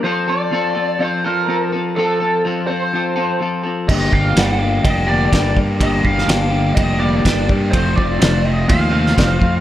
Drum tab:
CC |----------------|----------------|x---------------|----------------|
RD |----------------|----------------|----b---b---b---|b---b---b---b---|
SD |----------------|----------------|----o-------o---|---oo-------o---|
BD |----------------|----------------|o-o-----o---o-o-|o-o-----o---o-o-|

CC |----------------|
RD |b---b---b---b---|
SD |----o------oo---|
BD |o-o-----o---o-o-|